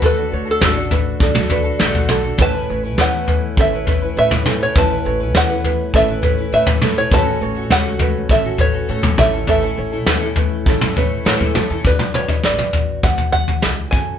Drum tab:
SD |----o-------o---|----o-----------|----o-----------|----o-----------|
T2 |----o----o----o-|-------------oo-|-------------oo-|-------------oo-|
FT |o---o-o---o--o--|o---o-o---o--o--|o---o-o---o--o--|o---o-o---o--o--|
BD |--------o-------|o-------o-------|o-------o-------|o-------o-----o-|

SD |----o-------o---|----o-------o---|
T2 |----o----o----o-|-oo--o----------|
FT |o---o-o---o--o--|o--o--o-oooo----|
BD |--------o-------|o-------o-----o-|